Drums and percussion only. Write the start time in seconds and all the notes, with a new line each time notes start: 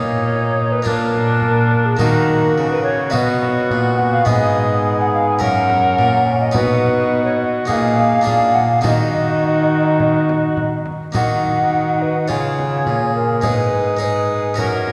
0.86 frame drum
1.14 frame drum
1.42 frame drum
1.71 frame drum
1.99 frame drum
3.13 frame drum
3.42 frame drum
3.70 frame drum
3.98 frame drum
4.26 frame drum
5.41 frame drum
5.70 frame drum
5.98 frame drum
6.27 frame drum
6.55 frame drum
7.69 frame drum
7.98 frame drum
8.27 frame drum
8.56 frame drum
8.84 frame drum
10.00 frame drum
10.29 frame drum
10.57 frame drum
10.86 frame drum
11.15 frame drum
12.30 frame drum
12.59 frame drum
12.86 frame drum
13.43 frame drum
14.58 frame drum
14.87 frame drum